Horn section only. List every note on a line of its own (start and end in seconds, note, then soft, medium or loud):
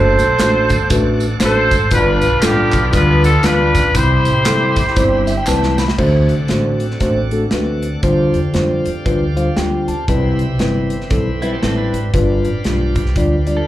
0.00 1.16 A4 medium
0.00 1.17 C5 medium
1.42 1.89 A4 medium
1.42 1.89 C5 loud
1.93 2.43 D4 medium
1.93 2.90 F4 medium
1.93 2.43 B4 loud
2.44 3.41 B3 medium
2.44 2.93 D4 medium
2.44 2.91 G4 loud
2.94 3.43 D4 medium
2.94 3.43 F4 medium
2.94 3.22 B4 loud
3.25 3.43 A4 loud
3.44 3.91 D4 medium
3.44 3.91 F4 medium
3.44 3.95 B4 loud
3.95 5.44 E4 medium
3.95 5.44 G4 medium
3.95 5.48 C5 medium